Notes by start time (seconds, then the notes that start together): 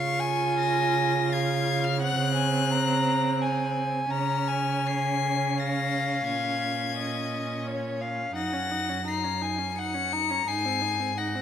Already playing: C#3 F4 F5 C#6
0.20 G#5
0.58 A#6
1.32 F5 G#6
1.84 F6
2.01 C4 F#5 F#6
2.36 G#5
2.71 A#5
3.41 G#5
4.10 C#3 C#4 A#5 F6
4.48 G#5
4.87 C7
5.58 F5 A#6
6.26 A#2 G#6
6.98 D#5
7.67 C#5
8.01 F5
8.36 F#2 D#4 F#5 A#6
8.53 C#4
8.71 D#4
8.89 C#4
9.06 D#4 A#5 C7
9.24 C#4
9.41 D#4 G#5
9.58 C#4
9.77 D#4 F#5 C#7
9.94 C#4
10.13 D#4 A#5
10.30 C#4
10.47 G#2 D#4 G#5 C7
10.65 C4
10.82 D#4
10.99 C4
11.17 D#4 F#5 A#6
11.35 C4